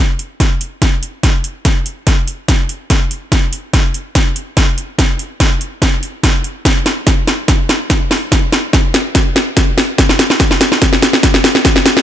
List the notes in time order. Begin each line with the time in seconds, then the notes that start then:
0.19 closed hi-hat
0.40 kick, snare, closed hi-hat
0.61 closed hi-hat
0.82 kick, snare, closed hi-hat
1.03 closed hi-hat
1.23 kick, snare, closed hi-hat
1.44 closed hi-hat
1.65 kick, snare, closed hi-hat
1.86 closed hi-hat
2.07 kick, snare, closed hi-hat
2.28 closed hi-hat
2.48 kick, snare, closed hi-hat
2.69 closed hi-hat
2.90 kick, snare, closed hi-hat
3.11 closed hi-hat
3.32 kick, snare, closed hi-hat
3.53 closed hi-hat
3.73 kick, snare, closed hi-hat
3.94 closed hi-hat
4.15 kick, snare, closed hi-hat
4.36 closed hi-hat
4.57 kick, snare, closed hi-hat
4.78 closed hi-hat
4.99 kick, snare, closed hi-hat
5.19 closed hi-hat
5.40 kick, snare, closed hi-hat
5.61 closed hi-hat
5.82 kick, snare, closed hi-hat
6.03 closed hi-hat
6.23 kick, snare, closed hi-hat
6.44 closed hi-hat
6.65 kick, snare, closed hi-hat
6.86 snare, closed hi-hat
7.07 kick, snare, closed hi-hat
7.28 snare, closed hi-hat
7.48 kick, snare, closed hi-hat
7.69 snare, closed hi-hat
7.90 kick, snare, closed hi-hat
8.11 snare, open hi-hat
8.32 kick, snare, closed hi-hat
8.53 snare, closed hi-hat
8.73 kick, snare, closed hi-hat
8.94 snare, closed hi-hat
9.15 kick, snare, closed hi-hat
9.36 snare, closed hi-hat
9.57 kick, snare, closed hi-hat
9.78 snare, open hi-hat
9.98 kick, snare, closed hi-hat
10.09 snare
10.19 snare, closed hi-hat
10.30 snare
10.40 kick, snare, closed hi-hat
10.51 snare
10.61 snare, closed hi-hat
10.72 snare
10.82 kick, snare, closed hi-hat
10.93 snare
11.02 snare, closed hi-hat
11.13 snare
11.23 kick, snare, closed hi-hat
11.34 snare
11.44 snare, open hi-hat
11.55 snare
11.65 kick, snare, closed hi-hat
11.76 snare
11.86 snare, closed hi-hat
11.97 snare